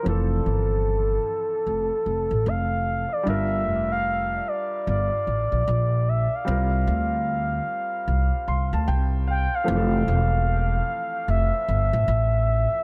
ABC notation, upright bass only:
X:1
M:4/4
L:1/16
Q:"Swing 16ths" 1/4=75
K:F
V:1 name="Upright bass" clef=bass
F,,,2 G,,,4 z2 F,,, z F,,, A,,, F,,,3 z | G,,,2 F,,,4 z2 G,,, z A,,, B,,, B,,,3 z | C,,2 D,,4 z2 C,, z C,, D,, C,,3 z | F,,,2 E,,,4 z2 F,,, z G,,, A,,, A,,,3 z |]